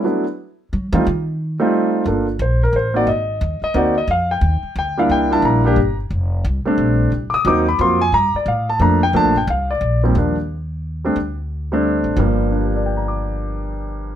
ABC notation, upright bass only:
X:1
M:3/4
L:1/8
Q:"Swing" 1/4=178
K:Fmix
V:1 name="Upright bass" clef=bass
z4 ^F, =E, | E,3 z3 | [K:Gm] G,,,2 B,,,2 A,,,2 | _A,,,2 E,, z D,,2 |
F,,2 E,, z D,,2 | C,,2 B,,,2 G,,,2 | F,,,2 C,, z B,,,2 | C,, z E,,2 F,,2 |
G,, z A,,2 F,,2 | (3D,, B,,, G,,, C,,2 B,,,2 | E,,6 | D,,4- D,, A,,, |
G,,,6- | G,,,6 |]